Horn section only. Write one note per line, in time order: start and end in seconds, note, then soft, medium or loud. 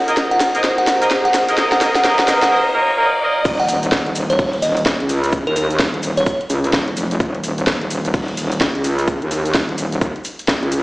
0.08 0.16 A#3 medium
0.08 0.16 D#4 medium
0.08 0.16 A#4 medium
0.08 0.16 D#5 loud
0.55 0.62 A#3 medium
0.55 0.62 D#4 medium
0.55 0.62 A#4 medium
0.55 0.62 D#5 loud
1.02 1.09 A#3 medium
1.02 1.09 D#4 medium
1.02 1.09 A#4 medium
1.02 1.09 D#5 loud
1.49 1.56 A#3 medium
1.49 1.56 D#4 medium
1.49 1.56 A#4 medium
1.49 1.56 D#5 loud
1.58 1.73 A#3 medium
1.58 1.73 D#4 medium
1.58 1.73 A#4 medium
1.58 1.73 D#5 loud
1.81 1.97 A#3 medium
1.81 1.97 D#4 medium
1.81 1.97 A#4 medium
1.81 1.97 D#5 loud
2.04 2.20 A#3 medium
2.04 2.20 D#4 medium
2.04 2.20 A#4 medium
2.04 2.20 D#5 loud
2.28 2.44 A#3 loud
2.28 2.44 D#4 medium
2.28 2.44 A#4 medium
2.28 2.44 D#5 loud
2.51 2.67 A#3 medium
2.51 2.67 D#4 medium
2.51 2.67 A#4 medium
2.51 2.67 D#5 loud
2.75 2.91 A#3 loud
2.75 2.91 D#4 medium
2.75 2.91 A#4 medium
2.75 2.91 D#5 loud
2.98 3.14 A#3 loud
2.98 3.14 D#4 medium
2.98 3.14 A#4 medium
2.98 3.14 D#5 loud
3.22 3.37 A#3 medium
3.22 3.37 D#4 medium
3.22 3.37 A#4 medium
3.22 3.37 D#5 loud